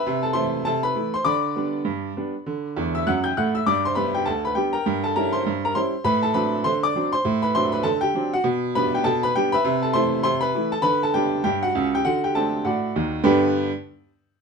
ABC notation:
X:1
M:2/4
L:1/16
Q:"Swing 16ths" 1/4=100
K:G
V:1 name="Upright piano"
[Beb] [Aa] [cc']2 [Aa] [Bb]2 [cc'] | [dbd']8- | [dbd']3 [ee'] [ff'] [gg'] [ff'] [ee'] | [dd'] [cc'] [Bb] [Gg] [Aa] [Bb] [Gg] [_Bg_b]- |
[_Bg_b] [Aa] [Bb] [cc']2 [Bb] [cc']2 | [Bb] [Aa] [Bb]2 [cc'] [dd']2 [cc']- | [cc'] [Bb] [cc'] [Bb] [Aa] [Gg]2 [Ff] | z2 [Bb] [Gg] [Aa] [Bb] [Gg] [Beb]- |
[Beb] [Aa] [cc']2 [cc'] [Bb]2 [Aa] | [Bb] [Aa] [Gg]2 [Gg] [Ff]2 [Gg] | [Ff] [Gg] [Aa]2 [Fdf]4 | [G,,D,B,DGBg]2 z6 |]
V:2 name="Upright piano" clef=bass
C,2 [E,A,E]2 C,2 [E,A,E]2 | D,2 [G,B,D]2 G,,2 [G,B,D]2 | D,2 [E,,E,]2 [F,,F,]2 [A,,A,]2 | G,,2 [G,B,D]2 D,,2 [G,B,D]2 |
G,,2 [G,_DE]2 G,,2 [G,DE]2 | A,,2 [F,CD]2 D,2 [F,CD]2 | A,,2 [F,CD]2 D,2 [F,CD]2 | B,,2 [G,B,D]2 B,,2 [G,B,D]2 |
C,2 [E,A,E]2 C,2 [E,A,E]2 | D,2 [G,B,D]2 G,,2 [^C,,^C,]2 | D,2 [A,CD]2 A,,2 [_E,,_E,]2 | z8 |]